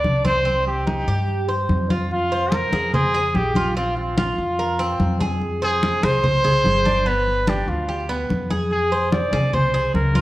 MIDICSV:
0, 0, Header, 1, 5, 480
1, 0, Start_track
1, 0, Tempo, 412655
1, 530, Time_signature, 4, 2, 24, 8
1, 11877, End_track
2, 0, Start_track
2, 0, Title_t, "Trumpet"
2, 0, Program_c, 0, 56
2, 0, Note_on_c, 0, 74, 95
2, 294, Note_off_c, 0, 74, 0
2, 304, Note_on_c, 0, 72, 100
2, 745, Note_off_c, 0, 72, 0
2, 782, Note_on_c, 0, 67, 77
2, 1692, Note_off_c, 0, 67, 0
2, 2469, Note_on_c, 0, 65, 97
2, 2945, Note_on_c, 0, 70, 101
2, 2962, Note_off_c, 0, 65, 0
2, 3413, Note_off_c, 0, 70, 0
2, 3420, Note_on_c, 0, 68, 105
2, 3901, Note_on_c, 0, 67, 89
2, 3918, Note_off_c, 0, 68, 0
2, 4379, Note_off_c, 0, 67, 0
2, 4384, Note_on_c, 0, 65, 85
2, 4604, Note_off_c, 0, 65, 0
2, 4626, Note_on_c, 0, 65, 81
2, 6016, Note_off_c, 0, 65, 0
2, 6548, Note_on_c, 0, 68, 107
2, 7026, Note_on_c, 0, 72, 113
2, 7044, Note_off_c, 0, 68, 0
2, 8231, Note_on_c, 0, 71, 100
2, 8248, Note_off_c, 0, 72, 0
2, 8716, Note_on_c, 0, 67, 84
2, 8733, Note_off_c, 0, 71, 0
2, 8947, Note_on_c, 0, 65, 73
2, 8964, Note_off_c, 0, 67, 0
2, 9421, Note_off_c, 0, 65, 0
2, 10141, Note_on_c, 0, 68, 96
2, 10584, Note_off_c, 0, 68, 0
2, 10610, Note_on_c, 0, 74, 88
2, 11100, Note_on_c, 0, 72, 100
2, 11117, Note_off_c, 0, 74, 0
2, 11566, Note_off_c, 0, 72, 0
2, 11573, Note_on_c, 0, 70, 91
2, 11877, Note_off_c, 0, 70, 0
2, 11877, End_track
3, 0, Start_track
3, 0, Title_t, "Cuban tres"
3, 0, Program_c, 1, 25
3, 0, Note_on_c, 1, 62, 72
3, 276, Note_off_c, 1, 62, 0
3, 287, Note_on_c, 1, 60, 82
3, 511, Note_off_c, 1, 60, 0
3, 524, Note_on_c, 1, 60, 71
3, 994, Note_off_c, 1, 60, 0
3, 1010, Note_on_c, 1, 63, 63
3, 1244, Note_off_c, 1, 63, 0
3, 1255, Note_on_c, 1, 67, 76
3, 1720, Note_off_c, 1, 67, 0
3, 1729, Note_on_c, 1, 72, 76
3, 2198, Note_off_c, 1, 72, 0
3, 2211, Note_on_c, 1, 65, 72
3, 2446, Note_off_c, 1, 65, 0
3, 2696, Note_on_c, 1, 72, 71
3, 3162, Note_off_c, 1, 72, 0
3, 3176, Note_on_c, 1, 68, 67
3, 3409, Note_off_c, 1, 68, 0
3, 3419, Note_on_c, 1, 72, 66
3, 3650, Note_off_c, 1, 72, 0
3, 3654, Note_on_c, 1, 68, 87
3, 4121, Note_off_c, 1, 68, 0
3, 4139, Note_on_c, 1, 65, 83
3, 4371, Note_off_c, 1, 65, 0
3, 4380, Note_on_c, 1, 60, 80
3, 4844, Note_off_c, 1, 60, 0
3, 4857, Note_on_c, 1, 65, 73
3, 5323, Note_off_c, 1, 65, 0
3, 5339, Note_on_c, 1, 70, 70
3, 5571, Note_off_c, 1, 70, 0
3, 5574, Note_on_c, 1, 60, 88
3, 6042, Note_off_c, 1, 60, 0
3, 6053, Note_on_c, 1, 68, 78
3, 6521, Note_off_c, 1, 68, 0
3, 6537, Note_on_c, 1, 72, 79
3, 7003, Note_off_c, 1, 72, 0
3, 7019, Note_on_c, 1, 68, 74
3, 7252, Note_off_c, 1, 68, 0
3, 7254, Note_on_c, 1, 72, 65
3, 7489, Note_off_c, 1, 72, 0
3, 7497, Note_on_c, 1, 68, 82
3, 7963, Note_off_c, 1, 68, 0
3, 7974, Note_on_c, 1, 62, 77
3, 8209, Note_off_c, 1, 62, 0
3, 8214, Note_on_c, 1, 59, 73
3, 8681, Note_off_c, 1, 59, 0
3, 8695, Note_on_c, 1, 62, 61
3, 9161, Note_off_c, 1, 62, 0
3, 9176, Note_on_c, 1, 67, 63
3, 9409, Note_off_c, 1, 67, 0
3, 9416, Note_on_c, 1, 59, 86
3, 9881, Note_off_c, 1, 59, 0
3, 9896, Note_on_c, 1, 68, 79
3, 10361, Note_off_c, 1, 68, 0
3, 10377, Note_on_c, 1, 72, 69
3, 10841, Note_off_c, 1, 72, 0
3, 10853, Note_on_c, 1, 68, 70
3, 11086, Note_off_c, 1, 68, 0
3, 11090, Note_on_c, 1, 72, 66
3, 11324, Note_off_c, 1, 72, 0
3, 11329, Note_on_c, 1, 68, 79
3, 11796, Note_off_c, 1, 68, 0
3, 11808, Note_on_c, 1, 65, 85
3, 11877, Note_off_c, 1, 65, 0
3, 11877, End_track
4, 0, Start_track
4, 0, Title_t, "Upright bass"
4, 0, Program_c, 2, 32
4, 48, Note_on_c, 2, 36, 89
4, 1181, Note_off_c, 2, 36, 0
4, 1249, Note_on_c, 2, 43, 86
4, 1925, Note_off_c, 2, 43, 0
4, 1967, Note_on_c, 2, 41, 90
4, 3101, Note_off_c, 2, 41, 0
4, 3166, Note_on_c, 2, 41, 85
4, 3845, Note_off_c, 2, 41, 0
4, 3885, Note_on_c, 2, 34, 93
4, 5021, Note_off_c, 2, 34, 0
4, 5095, Note_on_c, 2, 41, 84
4, 5770, Note_off_c, 2, 41, 0
4, 5814, Note_on_c, 2, 41, 93
4, 6946, Note_off_c, 2, 41, 0
4, 7013, Note_on_c, 2, 36, 82
4, 7689, Note_off_c, 2, 36, 0
4, 7730, Note_on_c, 2, 31, 96
4, 8863, Note_off_c, 2, 31, 0
4, 8932, Note_on_c, 2, 38, 91
4, 9607, Note_off_c, 2, 38, 0
4, 9651, Note_on_c, 2, 41, 88
4, 10781, Note_off_c, 2, 41, 0
4, 10845, Note_on_c, 2, 36, 90
4, 11522, Note_off_c, 2, 36, 0
4, 11564, Note_on_c, 2, 37, 93
4, 11877, Note_off_c, 2, 37, 0
4, 11877, End_track
5, 0, Start_track
5, 0, Title_t, "Drums"
5, 51, Note_on_c, 9, 63, 73
5, 168, Note_off_c, 9, 63, 0
5, 293, Note_on_c, 9, 63, 80
5, 410, Note_off_c, 9, 63, 0
5, 540, Note_on_c, 9, 63, 29
5, 657, Note_off_c, 9, 63, 0
5, 778, Note_on_c, 9, 63, 30
5, 894, Note_off_c, 9, 63, 0
5, 1016, Note_on_c, 9, 63, 83
5, 1133, Note_off_c, 9, 63, 0
5, 1261, Note_on_c, 9, 63, 30
5, 1378, Note_off_c, 9, 63, 0
5, 1492, Note_on_c, 9, 63, 35
5, 1609, Note_off_c, 9, 63, 0
5, 1733, Note_on_c, 9, 63, 36
5, 1849, Note_off_c, 9, 63, 0
5, 1968, Note_on_c, 9, 63, 82
5, 2084, Note_off_c, 9, 63, 0
5, 2211, Note_on_c, 9, 63, 80
5, 2327, Note_off_c, 9, 63, 0
5, 2453, Note_on_c, 9, 63, 32
5, 2570, Note_off_c, 9, 63, 0
5, 2696, Note_on_c, 9, 63, 30
5, 2812, Note_off_c, 9, 63, 0
5, 2931, Note_on_c, 9, 63, 93
5, 3047, Note_off_c, 9, 63, 0
5, 3171, Note_on_c, 9, 63, 79
5, 3288, Note_off_c, 9, 63, 0
5, 3416, Note_on_c, 9, 63, 35
5, 3416, Note_on_c, 9, 64, 85
5, 3532, Note_off_c, 9, 63, 0
5, 3532, Note_off_c, 9, 64, 0
5, 3658, Note_on_c, 9, 63, 34
5, 3774, Note_off_c, 9, 63, 0
5, 3892, Note_on_c, 9, 63, 86
5, 4008, Note_off_c, 9, 63, 0
5, 4130, Note_on_c, 9, 63, 83
5, 4246, Note_off_c, 9, 63, 0
5, 4373, Note_on_c, 9, 63, 31
5, 4489, Note_off_c, 9, 63, 0
5, 4615, Note_on_c, 9, 63, 34
5, 4731, Note_off_c, 9, 63, 0
5, 4857, Note_on_c, 9, 63, 90
5, 4973, Note_off_c, 9, 63, 0
5, 5099, Note_on_c, 9, 63, 33
5, 5216, Note_off_c, 9, 63, 0
5, 5335, Note_on_c, 9, 63, 31
5, 5451, Note_off_c, 9, 63, 0
5, 5575, Note_on_c, 9, 63, 34
5, 5692, Note_off_c, 9, 63, 0
5, 5814, Note_on_c, 9, 63, 82
5, 5930, Note_off_c, 9, 63, 0
5, 6060, Note_on_c, 9, 63, 85
5, 6176, Note_off_c, 9, 63, 0
5, 6298, Note_on_c, 9, 63, 31
5, 6414, Note_off_c, 9, 63, 0
5, 6543, Note_on_c, 9, 63, 34
5, 6659, Note_off_c, 9, 63, 0
5, 6779, Note_on_c, 9, 63, 86
5, 6896, Note_off_c, 9, 63, 0
5, 7018, Note_on_c, 9, 63, 86
5, 7134, Note_off_c, 9, 63, 0
5, 7258, Note_on_c, 9, 63, 36
5, 7258, Note_on_c, 9, 64, 77
5, 7374, Note_off_c, 9, 63, 0
5, 7374, Note_off_c, 9, 64, 0
5, 7500, Note_on_c, 9, 63, 35
5, 7500, Note_on_c, 9, 64, 69
5, 7617, Note_off_c, 9, 63, 0
5, 7617, Note_off_c, 9, 64, 0
5, 7744, Note_on_c, 9, 63, 81
5, 7860, Note_off_c, 9, 63, 0
5, 7984, Note_on_c, 9, 63, 82
5, 8101, Note_off_c, 9, 63, 0
5, 8224, Note_on_c, 9, 63, 31
5, 8340, Note_off_c, 9, 63, 0
5, 8462, Note_on_c, 9, 63, 32
5, 8578, Note_off_c, 9, 63, 0
5, 8696, Note_on_c, 9, 63, 84
5, 8812, Note_off_c, 9, 63, 0
5, 8939, Note_on_c, 9, 63, 33
5, 9055, Note_off_c, 9, 63, 0
5, 9179, Note_on_c, 9, 63, 33
5, 9296, Note_off_c, 9, 63, 0
5, 9420, Note_on_c, 9, 63, 34
5, 9537, Note_off_c, 9, 63, 0
5, 9661, Note_on_c, 9, 63, 82
5, 9778, Note_off_c, 9, 63, 0
5, 9896, Note_on_c, 9, 63, 71
5, 10012, Note_off_c, 9, 63, 0
5, 10135, Note_on_c, 9, 63, 31
5, 10252, Note_off_c, 9, 63, 0
5, 10381, Note_on_c, 9, 63, 31
5, 10497, Note_off_c, 9, 63, 0
5, 10614, Note_on_c, 9, 63, 87
5, 10730, Note_off_c, 9, 63, 0
5, 10851, Note_on_c, 9, 63, 83
5, 10967, Note_off_c, 9, 63, 0
5, 11093, Note_on_c, 9, 63, 34
5, 11093, Note_on_c, 9, 64, 77
5, 11209, Note_off_c, 9, 63, 0
5, 11209, Note_off_c, 9, 64, 0
5, 11330, Note_on_c, 9, 63, 37
5, 11446, Note_off_c, 9, 63, 0
5, 11570, Note_on_c, 9, 63, 76
5, 11687, Note_off_c, 9, 63, 0
5, 11807, Note_on_c, 9, 63, 82
5, 11877, Note_off_c, 9, 63, 0
5, 11877, End_track
0, 0, End_of_file